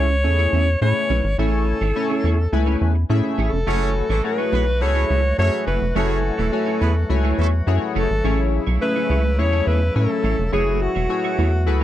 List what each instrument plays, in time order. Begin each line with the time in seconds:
Already playing: analog synth bass C#2, clean electric guitar C#4, alto saxophone C#5
0.10 muted clean electric guitar stroke
0.24 analog synth bass E2, analog polysynth A3 C#4 E4 G#4 C#5, muted clean electric guitar stroke
0.39 clean electric guitar C#4 E4 G#4 C#5
0.53 analog synth bass E2, clean electric guitar C#4 E4 G#4 E5
0.67 muted clean electric guitar stroke
0.81 analog synth bass A2, analog polysynth A3 C#4 E4 G#4 B4, alto saxophone C#5, muted clean electric guitar stroke
0.95 muted clean electric guitar stroke
1.10 analog synth bass B1, clean electric guitar C#4 E4 G#4 C#5
1.24 analog synth bass G#1, muted clean electric guitar stroke
1.38 analog synth bass A1, analog polysynth A3 C#4 E4 C#5 G#5, clean electric guitar C#4 E4 G#4 C#5, alto saxophone A4
1.67 muted clean electric guitar stroke
1.81 analog synth bass G#1, clean electric guitar C#4 E4 G#4 C#5
1.96 analog polysynth A3 C#4 E4 C#5 G#5, muted clean electric guitar stroke
2.10 clean electric guitar C#4 E4 G#4 C#5
2.24 analog synth bass E2, clean electric guitar C#4 E4 G#4 C#5
2.38 muted clean electric guitar stroke
2.52 analog synth bass C#2, analog polysynth A3 C#4 E4 B4 G#5, muted clean electric guitar stroke
2.66 clean electric guitar C#4 E4 G#4 C#5
2.81 analog synth bass E2, muted clean electric guitar stroke
2.95 muted clean electric guitar stroke
3.09 analog synth bass A2, analog polysynth A3 C#4 E4 G#4 E5, muted clean electric guitar stroke
3.24 muted clean electric guitar stroke
3.38 analog synth bass A1, clean electric guitar C#4 E4 G#4 C#5, alto saxophone A4
3.52 analog synth bass F1, muted clean electric guitar stroke
3.66 analog synth bass F#1, woodwind section E3 F#3 A3 F#4, clean electric guitar A3 E4 G#4 C#5, analog polysynth A3 E4 F#4 C#5 G#5, horn section A3 C#4 G#4 C#5
3.95 muted clean electric guitar stroke
4.09 analog synth bass A1, horn section E3 A3 C#4 A4, clean electric guitar A3 E4 G#4 C#5
4.24 analog polysynth A3 E4 F#4 G#4 C#5, alto saxophone B4, muted clean electric guitar stroke
4.38 clean electric guitar A3 E4 G#4 C#5
4.52 analog synth bass B1, clean electric guitar A3 E4 G#4 C#5, horn section B3 G#4 B4
4.67 muted clean electric guitar stroke
4.81 analog synth bass C#2, analog polysynth A3 E4 F#4 G#4 B4, horn section A3 C#4 G#4 C#5, alto saxophone C#5, muted clean electric guitar stroke
4.95 clean electric guitar A3 E4 G#4 C#5
5.09 analog synth bass C#2, clean electric guitar A3 E4 G#4 E5
5.24 muted clean electric guitar stroke
5.38 analog synth bass F#2, analog polysynth A3 E4 F#4 G#4 E5, horn section A3 C#4 G#4 C#5, alto saxophone C#5, muted clean electric guitar stroke
5.53 muted clean electric guitar stroke
5.66 analog synth bass F#1, clean electric guitar A3 E4 G#4 C#5, alto saxophone B4
5.81 analog synth bass F1, muted clean electric guitar stroke
5.95 analog synth bass F#1, clean electric guitar A3 E4 G#4 C#5, analog polysynth A3 E4 F#4 C#5 G#5, horn section A3 C#4 G#4 C#5, alto saxophone A4
6.24 muted clean electric guitar stroke
6.38 analog synth bass E1, horn section E3 A3 C#4 A4, clean electric guitar A3 E4 G#4 C#5
6.52 analog polysynth A3 E4 F#4 C#5 G#5, muted clean electric guitar stroke
6.66 clean electric guitar A3 E4 G#4 C#5
6.81 analog synth bass E2, clean electric guitar A3 E4 G#4 C#5, horn section B3 G#4 B4
6.95 muted clean electric guitar stroke
7.09 analog synth bass C#2, analog polysynth A3 E4 F#4 C#5 G#5, muted clean electric guitar stroke
7.24 clean electric guitar A3 E4 G#4 C#5
7.38 analog synth bass E2, horn section E3 A3 C#4 A4, clean electric guitar A3 E4 G#4 E5
7.53 muted clean electric guitar stroke
7.67 analog synth bass F#2, analog polysynth A3 E4 F#4 G#4 C#5, muted clean electric guitar stroke
7.81 muted clean electric guitar stroke
7.95 analog synth bass F#1, clean electric guitar A3 E4 G#4 C#5, alto saxophone A4
8.10 analog synth bass G#1, muted clean electric guitar stroke
8.24 analog synth bass A1, woodwind section C#3 A3 E4, clean electric guitar A3 E4 G#4 C#5, analog polysynth A3 C#4 E4 G#4 C#5
8.53 muted clean electric guitar stroke
8.67 analog synth bass B1, clean electric guitar A3 E4 G#4 C#5
8.81 analog polysynth A3 C#4 E4 G#4 E5, alto saxophone B4, muted clean electric guitar stroke
8.95 clean electric guitar A3 E4 G#4 C#5
9.09 analog synth bass C#2, clean electric guitar A3 E4 G#4 C#5
9.24 muted clean electric guitar stroke
9.38 analog synth bass E2, analog polysynth A3 C#4 E4 G#4 C#5, alto saxophone C#5, muted clean electric guitar stroke
9.52 clean electric guitar A3 E4 G#4 C#5
9.67 analog synth bass E2, clean electric guitar A3 E4 G#4 E5, alto saxophone B4
9.81 muted clean electric guitar stroke
9.95 analog synth bass A2, analog polysynth A3 C#4 E4 C#5 G#5, alto saxophone A4, muted clean electric guitar stroke
10.10 muted clean electric guitar stroke
10.24 analog synth bass A1, clean electric guitar A3 E4 G#4 C#5
10.38 analog synth bass F1, muted clean electric guitar stroke
10.52 analog synth bass F#1, woodwind section E3 A3 F#4, analog polysynth A3 E4 F#4 G#4 C#5, clean electric guitar A3 E4 G#4 C#5, alto saxophone G#4
10.81 alto saxophone F#4, muted clean electric guitar stroke
10.95 analog synth bass E1, clean electric guitar A3 E4 G#4 C#5
11.09 analog polysynth A3 E4 F#4 G#4 C#5, muted clean electric guitar stroke
11.24 clean electric guitar A3 E4 G#4 C#5
11.38 analog synth bass E2, clean electric guitar A3 E4 G#4 C#5
11.52 muted clean electric guitar stroke
11.66 analog synth bass C#2, analog polysynth A3 E4 F#4 G#4 B4, muted clean electric guitar stroke